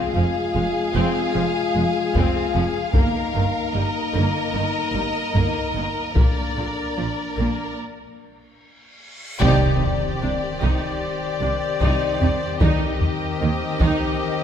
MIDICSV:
0, 0, Header, 1, 11, 480
1, 0, Start_track
1, 0, Key_signature, -3, "minor"
1, 0, Tempo, 798935
1, 1769, Time_signature, 4, 2, 24, 8
1, 3210, Tempo, 813008
1, 6090, Tempo, 797872
1, 8625, End_track
2, 0, Start_track
2, 0, Title_t, "Violin section"
2, 0, Program_c, 0, 48
2, 0, Note_on_c, 0, 77, 63
2, 2223, Note_off_c, 0, 77, 0
2, 2250, Note_on_c, 0, 75, 57
2, 3690, Note_on_c, 0, 74, 54
2, 3693, Note_off_c, 0, 75, 0
2, 4635, Note_off_c, 0, 74, 0
2, 5607, Note_on_c, 0, 74, 73
2, 7502, Note_off_c, 0, 74, 0
2, 7523, Note_on_c, 0, 75, 64
2, 8625, Note_off_c, 0, 75, 0
2, 8625, End_track
3, 0, Start_track
3, 0, Title_t, "Woodwind section"
3, 0, Program_c, 1, 71
3, 5610, Note_on_c, 1, 72, 91
3, 5610, Note_on_c, 1, 74, 95
3, 5612, Note_on_c, 1, 60, 97
3, 5612, Note_on_c, 1, 67, 93
3, 7504, Note_off_c, 1, 72, 0
3, 7504, Note_off_c, 1, 74, 0
3, 7532, Note_on_c, 1, 75, 73
3, 7534, Note_on_c, 1, 70, 76
3, 8625, Note_off_c, 1, 60, 0
3, 8625, Note_off_c, 1, 67, 0
3, 8625, Note_off_c, 1, 70, 0
3, 8625, Note_off_c, 1, 75, 0
3, 8625, End_track
4, 0, Start_track
4, 0, Title_t, "Violin section"
4, 0, Program_c, 2, 48
4, 0, Note_on_c, 2, 68, 58
4, 1772, Note_off_c, 2, 68, 0
4, 1775, Note_on_c, 2, 70, 62
4, 4635, Note_off_c, 2, 70, 0
4, 5612, Note_on_c, 2, 67, 81
4, 8625, Note_off_c, 2, 67, 0
4, 8625, End_track
5, 0, Start_track
5, 0, Title_t, "French horn section"
5, 0, Program_c, 3, 60
5, 0, Note_on_c, 3, 56, 61
5, 0, Note_on_c, 3, 65, 54
5, 1670, Note_off_c, 3, 56, 0
5, 1670, Note_off_c, 3, 65, 0
5, 1772, Note_on_c, 3, 58, 55
5, 1775, Note_on_c, 3, 63, 61
5, 3672, Note_off_c, 3, 63, 0
5, 3695, Note_on_c, 3, 62, 44
5, 4633, Note_off_c, 3, 58, 0
5, 4637, Note_off_c, 3, 62, 0
5, 5616, Note_on_c, 3, 74, 69
5, 5618, Note_on_c, 3, 51, 68
5, 7507, Note_off_c, 3, 74, 0
5, 7525, Note_on_c, 3, 63, 61
5, 8625, Note_off_c, 3, 51, 0
5, 8625, Note_off_c, 3, 63, 0
5, 8625, End_track
6, 0, Start_track
6, 0, Title_t, "Viola section"
6, 0, Program_c, 4, 48
6, 0, Note_on_c, 4, 60, 65
6, 72, Note_off_c, 4, 60, 0
6, 89, Note_on_c, 4, 53, 44
6, 137, Note_off_c, 4, 53, 0
6, 329, Note_on_c, 4, 56, 49
6, 377, Note_off_c, 4, 56, 0
6, 568, Note_on_c, 4, 60, 66
6, 791, Note_off_c, 4, 60, 0
6, 806, Note_on_c, 4, 53, 52
6, 854, Note_off_c, 4, 53, 0
6, 1049, Note_on_c, 4, 56, 46
6, 1098, Note_off_c, 4, 56, 0
6, 1290, Note_on_c, 4, 60, 61
6, 1513, Note_off_c, 4, 60, 0
6, 1526, Note_on_c, 4, 53, 53
6, 1574, Note_off_c, 4, 53, 0
6, 1771, Note_on_c, 4, 58, 59
6, 1993, Note_off_c, 4, 58, 0
6, 2006, Note_on_c, 4, 51, 45
6, 2054, Note_off_c, 4, 51, 0
6, 2250, Note_on_c, 4, 55, 44
6, 2298, Note_off_c, 4, 55, 0
6, 2494, Note_on_c, 4, 58, 55
6, 2715, Note_off_c, 4, 58, 0
6, 2732, Note_on_c, 4, 51, 43
6, 2780, Note_off_c, 4, 51, 0
6, 2970, Note_on_c, 4, 55, 40
6, 3018, Note_off_c, 4, 55, 0
6, 3210, Note_on_c, 4, 58, 52
6, 3434, Note_off_c, 4, 58, 0
6, 3452, Note_on_c, 4, 51, 49
6, 3499, Note_off_c, 4, 51, 0
6, 3686, Note_on_c, 4, 58, 51
6, 3913, Note_off_c, 4, 58, 0
6, 3929, Note_on_c, 4, 50, 37
6, 3976, Note_off_c, 4, 50, 0
6, 4174, Note_on_c, 4, 53, 39
6, 4221, Note_off_c, 4, 53, 0
6, 4413, Note_on_c, 4, 58, 44
6, 4638, Note_off_c, 4, 58, 0
6, 5616, Note_on_c, 4, 63, 80
6, 5837, Note_off_c, 4, 63, 0
6, 6091, Note_on_c, 4, 62, 49
6, 6139, Note_off_c, 4, 62, 0
6, 6327, Note_on_c, 4, 63, 53
6, 6554, Note_off_c, 4, 63, 0
6, 6812, Note_on_c, 4, 62, 47
6, 6860, Note_off_c, 4, 62, 0
6, 7049, Note_on_c, 4, 63, 63
6, 7273, Note_off_c, 4, 63, 0
6, 7291, Note_on_c, 4, 63, 50
6, 7339, Note_off_c, 4, 63, 0
6, 7527, Note_on_c, 4, 63, 65
6, 7753, Note_off_c, 4, 63, 0
6, 8003, Note_on_c, 4, 58, 48
6, 8051, Note_off_c, 4, 58, 0
6, 8251, Note_on_c, 4, 63, 67
6, 8474, Note_off_c, 4, 63, 0
6, 8625, End_track
7, 0, Start_track
7, 0, Title_t, "Cello section"
7, 0, Program_c, 5, 48
7, 88, Note_on_c, 5, 41, 50
7, 136, Note_off_c, 5, 41, 0
7, 332, Note_on_c, 5, 41, 48
7, 380, Note_off_c, 5, 41, 0
7, 569, Note_on_c, 5, 41, 72
7, 617, Note_off_c, 5, 41, 0
7, 808, Note_on_c, 5, 41, 53
7, 856, Note_off_c, 5, 41, 0
7, 1051, Note_on_c, 5, 41, 47
7, 1099, Note_off_c, 5, 41, 0
7, 1292, Note_on_c, 5, 41, 65
7, 1340, Note_off_c, 5, 41, 0
7, 1528, Note_on_c, 5, 41, 54
7, 1576, Note_off_c, 5, 41, 0
7, 1767, Note_on_c, 5, 43, 70
7, 1815, Note_off_c, 5, 43, 0
7, 2008, Note_on_c, 5, 43, 45
7, 2056, Note_off_c, 5, 43, 0
7, 2247, Note_on_c, 5, 43, 43
7, 2295, Note_off_c, 5, 43, 0
7, 2486, Note_on_c, 5, 43, 69
7, 2535, Note_off_c, 5, 43, 0
7, 2727, Note_on_c, 5, 43, 51
7, 2775, Note_off_c, 5, 43, 0
7, 2967, Note_on_c, 5, 43, 43
7, 3015, Note_off_c, 5, 43, 0
7, 3204, Note_on_c, 5, 43, 56
7, 3252, Note_off_c, 5, 43, 0
7, 3453, Note_on_c, 5, 43, 40
7, 3500, Note_off_c, 5, 43, 0
7, 3697, Note_on_c, 5, 46, 54
7, 3744, Note_off_c, 5, 46, 0
7, 3937, Note_on_c, 5, 46, 39
7, 3985, Note_off_c, 5, 46, 0
7, 4177, Note_on_c, 5, 46, 40
7, 4224, Note_off_c, 5, 46, 0
7, 4423, Note_on_c, 5, 46, 53
7, 4470, Note_off_c, 5, 46, 0
7, 5619, Note_on_c, 5, 48, 89
7, 5839, Note_off_c, 5, 48, 0
7, 6092, Note_on_c, 5, 48, 49
7, 6140, Note_off_c, 5, 48, 0
7, 6326, Note_on_c, 5, 48, 73
7, 6374, Note_off_c, 5, 48, 0
7, 6807, Note_on_c, 5, 48, 46
7, 6855, Note_off_c, 5, 48, 0
7, 7047, Note_on_c, 5, 48, 61
7, 7095, Note_off_c, 5, 48, 0
7, 7285, Note_on_c, 5, 48, 52
7, 7333, Note_off_c, 5, 48, 0
7, 7524, Note_on_c, 5, 51, 72
7, 7573, Note_off_c, 5, 51, 0
7, 8009, Note_on_c, 5, 51, 51
7, 8057, Note_off_c, 5, 51, 0
7, 8247, Note_on_c, 5, 51, 75
7, 8295, Note_off_c, 5, 51, 0
7, 8625, End_track
8, 0, Start_track
8, 0, Title_t, "Double bass section"
8, 0, Program_c, 6, 48
8, 94, Note_on_c, 6, 29, 46
8, 142, Note_off_c, 6, 29, 0
8, 331, Note_on_c, 6, 29, 45
8, 380, Note_off_c, 6, 29, 0
8, 571, Note_on_c, 6, 29, 67
8, 619, Note_off_c, 6, 29, 0
8, 815, Note_on_c, 6, 29, 49
8, 863, Note_off_c, 6, 29, 0
8, 1057, Note_on_c, 6, 29, 46
8, 1105, Note_off_c, 6, 29, 0
8, 1293, Note_on_c, 6, 29, 65
8, 1341, Note_off_c, 6, 29, 0
8, 1533, Note_on_c, 6, 29, 55
8, 1581, Note_off_c, 6, 29, 0
8, 1772, Note_on_c, 6, 31, 62
8, 1820, Note_off_c, 6, 31, 0
8, 2013, Note_on_c, 6, 31, 42
8, 2061, Note_off_c, 6, 31, 0
8, 2252, Note_on_c, 6, 31, 40
8, 2300, Note_off_c, 6, 31, 0
8, 2494, Note_on_c, 6, 31, 66
8, 2542, Note_off_c, 6, 31, 0
8, 2732, Note_on_c, 6, 31, 44
8, 2780, Note_off_c, 6, 31, 0
8, 2968, Note_on_c, 6, 31, 46
8, 3016, Note_off_c, 6, 31, 0
8, 3218, Note_on_c, 6, 31, 56
8, 3265, Note_off_c, 6, 31, 0
8, 3451, Note_on_c, 6, 31, 43
8, 3498, Note_off_c, 6, 31, 0
8, 3693, Note_on_c, 6, 34, 52
8, 3740, Note_off_c, 6, 34, 0
8, 3929, Note_on_c, 6, 34, 36
8, 3977, Note_off_c, 6, 34, 0
8, 4179, Note_on_c, 6, 34, 34
8, 4226, Note_off_c, 6, 34, 0
8, 4412, Note_on_c, 6, 34, 52
8, 4459, Note_off_c, 6, 34, 0
8, 5615, Note_on_c, 6, 36, 82
8, 5837, Note_off_c, 6, 36, 0
8, 6097, Note_on_c, 6, 36, 46
8, 6145, Note_off_c, 6, 36, 0
8, 6333, Note_on_c, 6, 36, 69
8, 6381, Note_off_c, 6, 36, 0
8, 6808, Note_on_c, 6, 36, 50
8, 6856, Note_off_c, 6, 36, 0
8, 7047, Note_on_c, 6, 36, 68
8, 7095, Note_off_c, 6, 36, 0
8, 7291, Note_on_c, 6, 36, 56
8, 7339, Note_off_c, 6, 36, 0
8, 7529, Note_on_c, 6, 39, 70
8, 7577, Note_off_c, 6, 39, 0
8, 8015, Note_on_c, 6, 39, 48
8, 8063, Note_off_c, 6, 39, 0
8, 8249, Note_on_c, 6, 39, 68
8, 8297, Note_off_c, 6, 39, 0
8, 8625, End_track
9, 0, Start_track
9, 0, Title_t, "Impact"
9, 0, Program_c, 7, 103
9, 5617, Note_on_c, 7, 60, 66
9, 7531, Note_off_c, 7, 60, 0
9, 8625, End_track
10, 0, Start_track
10, 0, Title_t, "Reverse cymbal"
10, 0, Program_c, 8, 119
10, 3694, Note_on_c, 8, 60, 44
10, 5618, Note_off_c, 8, 60, 0
10, 8625, End_track
11, 0, Start_track
11, 0, Title_t, "Taiko and cinematic ensemble drums"
11, 1292, Note_on_c, 9, 41, 69
11, 1352, Note_off_c, 9, 41, 0
11, 1771, Note_on_c, 9, 41, 81
11, 1831, Note_off_c, 9, 41, 0
11, 3216, Note_on_c, 9, 41, 68
11, 3275, Note_off_c, 9, 41, 0
11, 3693, Note_on_c, 9, 41, 91
11, 3752, Note_off_c, 9, 41, 0
11, 5616, Note_on_c, 9, 41, 97
11, 5675, Note_off_c, 9, 41, 0
11, 5853, Note_on_c, 9, 43, 46
11, 5912, Note_off_c, 9, 43, 0
11, 6333, Note_on_c, 9, 41, 68
11, 6393, Note_off_c, 9, 41, 0
11, 7046, Note_on_c, 9, 41, 74
11, 7106, Note_off_c, 9, 41, 0
11, 7288, Note_on_c, 9, 43, 51
11, 7348, Note_off_c, 9, 43, 0
11, 7527, Note_on_c, 9, 41, 99
11, 7588, Note_off_c, 9, 41, 0
11, 7768, Note_on_c, 9, 43, 46
11, 7828, Note_off_c, 9, 43, 0
11, 8244, Note_on_c, 9, 41, 79
11, 8304, Note_off_c, 9, 41, 0
11, 8625, End_track
0, 0, End_of_file